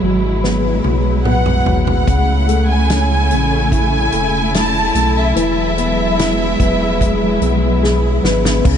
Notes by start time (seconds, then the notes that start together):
Already playing: B2 F#3 G#3 E4
0.02 G#1 F#3
0.43 B3, snare
0.84 B1 F#3, high tom
1.25 B3 F#5, mid tom
1.46 mid tom
1.66 G#1 F#3, floor tom
1.87 F#5, floor tom
2.07 C#2 C#3 A3 E4, kick, closed hi-hat
2.48 A3, closed hi-hat
2.71 G#5
2.90 C#4, snare, closed hi-hat
3.30 A1 A3, closed hi-hat
3.72 E4 G#5, kick, closed hi-hat
4.12 E1 A3, closed hi-hat
4.53 E4 A5, snare, closed hi-hat
4.95 B1 A3, closed hi-hat
5.18 E5
5.35 E1 E3 F#3 G#3, closed hi-hat
5.77 B3, closed hi-hat
6.18 E4, snare, closed hi-hat
6.59 E1 B3, kick, closed hi-hat
7.00 G#4, kick, closed hi-hat
7.41 B1 B3, closed hi-hat
7.82 G#4, snare
8.23 G#1 B3, snare
8.45 snare
8.64 C#2 C#3 B3 E4, kick, crash